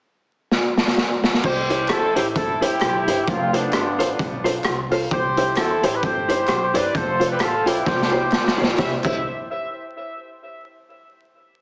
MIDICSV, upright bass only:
0, 0, Header, 1, 2, 480
1, 0, Start_track
1, 0, Key_signature, 0, "major"
1, 0, Tempo, 459770
1, 1501, Time_signature, 4, 2, 24, 8
1, 12127, End_track
2, 0, Start_track
2, 0, Title_t, "Upright bass"
2, 0, Program_c, 0, 32
2, 1503, Note_on_c, 0, 36, 106
2, 1911, Note_off_c, 0, 36, 0
2, 1980, Note_on_c, 0, 40, 91
2, 2212, Note_off_c, 0, 40, 0
2, 2249, Note_on_c, 0, 33, 88
2, 2428, Note_off_c, 0, 33, 0
2, 2460, Note_on_c, 0, 31, 87
2, 2868, Note_off_c, 0, 31, 0
2, 2942, Note_on_c, 0, 35, 95
2, 3172, Note_off_c, 0, 35, 0
2, 3211, Note_on_c, 0, 31, 89
2, 3388, Note_off_c, 0, 31, 0
2, 3419, Note_on_c, 0, 29, 109
2, 3827, Note_off_c, 0, 29, 0
2, 3905, Note_on_c, 0, 31, 93
2, 4133, Note_off_c, 0, 31, 0
2, 4177, Note_on_c, 0, 33, 91
2, 4351, Note_off_c, 0, 33, 0
2, 4378, Note_on_c, 0, 35, 94
2, 4786, Note_off_c, 0, 35, 0
2, 4860, Note_on_c, 0, 36, 91
2, 5266, Note_off_c, 0, 36, 0
2, 5336, Note_on_c, 0, 36, 108
2, 5743, Note_off_c, 0, 36, 0
2, 5815, Note_on_c, 0, 40, 89
2, 6046, Note_off_c, 0, 40, 0
2, 6088, Note_on_c, 0, 33, 91
2, 6264, Note_off_c, 0, 33, 0
2, 6293, Note_on_c, 0, 31, 91
2, 6701, Note_off_c, 0, 31, 0
2, 6769, Note_on_c, 0, 35, 88
2, 7002, Note_off_c, 0, 35, 0
2, 7040, Note_on_c, 0, 31, 89
2, 7219, Note_off_c, 0, 31, 0
2, 7251, Note_on_c, 0, 29, 106
2, 7659, Note_off_c, 0, 29, 0
2, 7727, Note_on_c, 0, 33, 90
2, 7960, Note_off_c, 0, 33, 0
2, 7997, Note_on_c, 0, 35, 78
2, 8177, Note_off_c, 0, 35, 0
2, 8208, Note_on_c, 0, 36, 94
2, 8618, Note_off_c, 0, 36, 0
2, 8692, Note_on_c, 0, 38, 107
2, 8923, Note_off_c, 0, 38, 0
2, 8958, Note_on_c, 0, 35, 81
2, 9137, Note_off_c, 0, 35, 0
2, 9171, Note_on_c, 0, 36, 100
2, 9323, Note_off_c, 0, 36, 0
2, 9441, Note_on_c, 0, 36, 96
2, 9636, Note_off_c, 0, 36, 0
2, 12127, End_track
0, 0, End_of_file